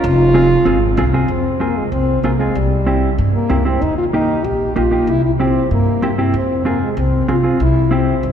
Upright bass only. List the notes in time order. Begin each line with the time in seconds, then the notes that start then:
0.04 F1
0.66 G#1
0.97 C2
1.28 F2
1.92 C2
2.23 C2
2.55 C2
3.18 G2
3.50 C#2
3.82 D#2
4.44 A#1
4.76 A#1
5.07 C2
5.71 G2
6.02 G2
6.34 F2
6.97 C2
7.29 C2
7.60 C2
8.23 G2